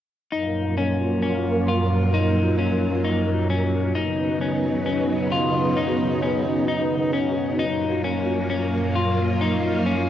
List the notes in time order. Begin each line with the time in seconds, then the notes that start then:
0.32 F#2 F#3 A#3 D#4 F4
0.77 C#4
1.22 C#4
1.68 F4
2.14 D#4
2.59 C#4
3.05 D#4
3.50 C#4
3.95 C#3 F#3 B3 D#4
4.41 C#4
4.86 C#4
5.32 F4
5.77 D#4
6.22 C#4
6.68 D#4
7.13 C#4
7.59 F#2 F#3 A#3 D#4 F4
8.04 C#4
8.50 C#4
8.95 F4
9.41 D#4
9.86 C#4